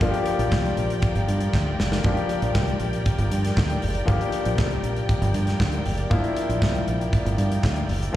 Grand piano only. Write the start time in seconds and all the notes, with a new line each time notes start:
0.01 F3 A#3 D4 F4
0.10 G4
2.04 F3 A#3 D4 G4
4.05 F3 A#3 D4 G4
6.10 F3 A#3 D4 E4
8.13 F3